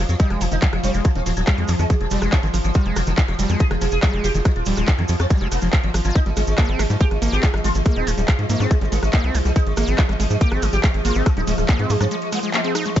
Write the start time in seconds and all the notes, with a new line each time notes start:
Already playing: F3
0.09 F2 F3, closed hi-hat, cabasa
0.20 G3 D#4, kick, closed hi-hat, ride, cabasa
0.30 F1 F3 G#3, cross-stick, closed hi-hat
0.41 F1 D#3 F3, open hi-hat, ride, cabasa
0.52 F1 D#3 D#4, closed hi-hat, cabasa
0.62 F3, kick, clap, closed hi-hat, ride, cabasa
0.73 F1 F3, cross-stick, closed hi-hat
0.84 F1 G3 C4, open hi-hat, ride, cabasa
0.94 F1 F3 G#3, closed hi-hat, cabasa
1.04 D#3 F3, kick, cross-stick, closed hi-hat, ride, cabasa
1.15 D#1 D#3 C4, closed hi-hat
1.26 D#1 F3, open hi-hat, ride, cabasa
1.37 D#1 F3, closed hi-hat, cabasa
1.47 G3, kick, cross-stick, clap, closed hi-hat, ride, cabasa
1.58 F2 F3 G#3, closed hi-hat
1.68 F2 D#3 F3, open hi-hat, ride, cabasa
1.79 F2 D#3 G#3, cross-stick, closed hi-hat, cabasa
1.90 F3, kick, closed hi-hat, ride, cabasa
2.01 F1 F3, closed hi-hat
2.11 F1 G3, open hi-hat, ride, cabasa
2.22 F1 F3 G#3, cross-stick, closed hi-hat, cabasa
2.32 D#3 C4, kick, clap, closed hi-hat, ride, cabasa
2.43 G#1 D#3 F3, closed hi-hat
2.54 G#1 F3, cross-stick, open hi-hat, ride, cabasa
2.64 G#1 F3, closed hi-hat, cabasa
2.74 G3 F4, kick, closed hi-hat, ride, cabasa
2.86 F1 F3 G#3, closed hi-hat
2.96 F1 D#3 F3, cross-stick, open hi-hat, ride, cabasa
3.07 F1 D#3 F3, closed hi-hat, cabasa
3.18 F3, kick, clap, closed hi-hat, ride, cabasa
3.28 F1 F3, cross-stick, closed hi-hat
3.39 F1 F3 G3, open hi-hat, ride, cabasa
3.49 F2 F3 G#3, closed hi-hat, cabasa
3.59 D#3 G#4, kick, closed hi-hat, ride, cabasa
3.71 F1 D#3 F3, cross-stick, closed hi-hat
3.81 F1 F3, open hi-hat, ride, cabasa
3.91 F1 G#4, closed hi-hat, cabasa
4.03 F3 G3, kick, cross-stick, clap, closed hi-hat, ride, cabasa
4.13 F1 F3 G#3, closed hi-hat
4.24 F1 D#3 G4, open hi-hat, ride, cabasa
4.35 F1 D#3 F3, closed hi-hat, cabasa
4.45 F3, kick, cross-stick, closed hi-hat, ride, cabasa
4.56 D#1 F4, closed hi-hat
4.66 D#1 F3 G3, open hi-hat, ride, cabasa
4.77 D#1 F3 G#3, cross-stick, closed hi-hat, cabasa
4.88 D#3, kick, clap, closed hi-hat, ride, cabasa
4.98 F2 D#3 F3, closed hi-hat
5.08 F2 F3, open hi-hat, ride, cabasa
5.20 F2 C4, cross-stick, closed hi-hat, cabasa
5.30 F3 G3, kick, closed hi-hat, ride, cabasa
5.41 F1 F3 G#3, closed hi-hat
5.52 F1 A#3, cross-stick, open hi-hat, ride, cabasa
5.61 F1 F3, closed hi-hat, cabasa
5.73 F3 A#3, kick, clap, closed hi-hat, ride, cabasa
5.84 G#1 F3, closed hi-hat
5.94 G#1 F3, cross-stick, open hi-hat, ride, cabasa
6.05 G#1 F3 F4, closed hi-hat, cabasa
6.15 G3 D#4, kick, closed hi-hat, ride, cabasa
6.26 G#1 G3 G#3, closed hi-hat
6.37 G#1 G#3, cross-stick, open hi-hat, ride, cabasa
6.47 G#1 G#3, closed hi-hat, cabasa
6.58 A#3, kick, clap, closed hi-hat, ride, cabasa
6.69 G#1 G#3 C4, closed hi-hat
6.79 G#1 G3 G#3, cross-stick, open hi-hat, ride, cabasa
6.90 G#2 G3 G#3, cabasa
7.00 G#3 G4, kick, closed hi-hat, ride, cabasa
7.11 G#1 G#3, cross-stick, closed hi-hat
7.22 G#1 G#3 A#3, open hi-hat, ride, cabasa
7.32 G#1 C4 G4, closed hi-hat, cabasa
7.43 G3 G#3, kick, clap, closed hi-hat, ride, cabasa
7.54 G#1 G3 G#3, cross-stick, closed hi-hat
7.64 G#1 G#3 F4, open hi-hat, ride, cabasa
7.75 G#1 G#3, closed hi-hat, cabasa
7.85 G#3 A#3, kick, cross-stick, closed hi-hat, ride, cabasa
7.96 D#1 C4 D#4, closed hi-hat
8.07 D#1 G3 G#3, open hi-hat, ride, cabasa
8.18 D#1 G3 G#3, closed hi-hat, cabasa
8.28 G#3, kick, cross-stick, clap, closed hi-hat, ride, cabasa
8.39 G#2 G#3, closed hi-hat
8.49 G#2 G#3 A#3, open hi-hat, ride, cabasa
8.60 G#2 C4, cross-stick, closed hi-hat, cabasa
8.71 G3 G#3, kick, closed hi-hat, ride, cabasa
8.81 G#1 G3 G#3, closed hi-hat
8.92 G#1 G#3 A#3, open hi-hat, ride, cabasa
9.03 G#1 G#3, cross-stick, closed hi-hat, cabasa
9.13 A#3 D#4, kick, clap, closed hi-hat, ride, cabasa
9.24 C2 G#3 C4, closed hi-hat
9.35 C2 G3, cross-stick, open hi-hat, ride, cabasa
9.45 C2 G3 G#3, closed hi-hat, cabasa
9.56 G#3 D#4, kick, closed hi-hat, ride, cabasa
9.67 G#1 G#3, closed hi-hat
9.77 G#1 G#3 A#3, cross-stick, open hi-hat, ride, cabasa
9.87 G#1 G#3 C4, closed hi-hat, cabasa
9.98 G3, kick, clap, closed hi-hat, ride, cabasa
10.09 G#1 G3 G#3, cross-stick, closed hi-hat
10.20 G#1 G#3, open hi-hat, ride, cabasa
10.30 G#2 G#3, closed hi-hat, cabasa
10.41 A#3 G4, kick, closed hi-hat, ride, cabasa
10.52 G#1 G#3 C4, cross-stick, closed hi-hat
10.62 G#1 G3 G#3, open hi-hat, ride, cabasa
10.73 G#1 G3 G4, closed hi-hat, cabasa
10.83 G#3, kick, cross-stick, clap, closed hi-hat, ride, cabasa
10.94 G#1 G#3, closed hi-hat
11.05 G#1 A#3 F4, open hi-hat, ride, cabasa
11.15 G#1 G#3 C4, closed hi-hat, cabasa
11.26 G3 G#3, kick, cross-stick, closed hi-hat, ride, cabasa
11.37 D#1 G3 D#4, closed hi-hat
11.47 D#1 G#3, open hi-hat, ride, cabasa
11.58 D#1 G#3, cross-stick, closed hi-hat, cabasa
11.68 A#3, kick, clap, closed hi-hat, ride, cabasa
11.79 G#2 G#3 C4, closed hi-hat
11.90 G#2 G3 G#3, open hi-hat, ride, cabasa
12.01 G#2 G3 C4, cross-stick, closed hi-hat, cabasa
12.11 G#3, closed hi-hat, ride, cabasa
12.22 G#3, closed hi-hat
12.32 G#3 A#3, cross-stick, open hi-hat, ride, cabasa
12.43 G#3, closed hi-hat, cabasa
12.54 G#3 A#3, clap, closed hi-hat, ride, cabasa
12.64 G#3 C4, clap, closed hi-hat
12.75 D#4, cross-stick, open hi-hat, ride, cabasa
12.85 G#3, closed hi-hat, cabasa
12.96 F3 C4, kick, closed hi-hat, crash, cabasa